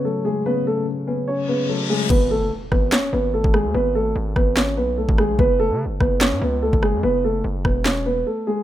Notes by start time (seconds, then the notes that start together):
Already playing: C#3 C#4 C#5
0.05 F#3 A3 A4
0.25 G#3 A3 G#4
0.46 C#3 B3 B4
0.67 A3 A4
1.07 B3 C#4 B4
1.28 C#4 C#5, reverse cymbal
1.48 C#3 B3 B4
1.69 F#3 A3 A4
1.90 G#3 A3 G#4
2.10 G#1 B3 B4, kick, crash, impact
2.31 A3 A4
2.41 F#1
2.72 G#1 B3 B4, kick, cross-stick
2.92 C#4 C#5, snare, clap
3.13 G#1 B3 B4
3.34 A3 A4
3.44 G#1, kick
3.54 G#3 G#4, cross-stick
3.65 D#2
3.74 G#1 B3 B4
3.95 A3 A4
4.16 G#1
4.36 G#1 B3 B4, kick, cross-stick
4.57 C#4 C#5, snare, clap
4.77 B1 B3 B4
4.98 A3 A4
5.09 G#1, kick
5.18 G#3 G#4, cross-stick
5.29 B1
5.39 F#1 B3 B4, kick
5.60 A3 A4
5.70 C#3
5.85 F#1
6.00 F#1 B3 B4, kick, cross-stick
6.21 C#4 C#5, snare, clap
6.32 A2
6.41 C#2 B3 B4
6.62 A3 A4
6.73 F#1, kick
6.82 G#3 G#4, cross-stick
6.94 F#2
7.03 F#1 B3 B4
7.25 A3 A4
7.44 F#1
7.65 E1 B3 B4, kick, cross-stick
7.85 C#4 C#5, snare, clap
8.06 B3 B4
8.27 A3 A4
8.47 G#3 G#4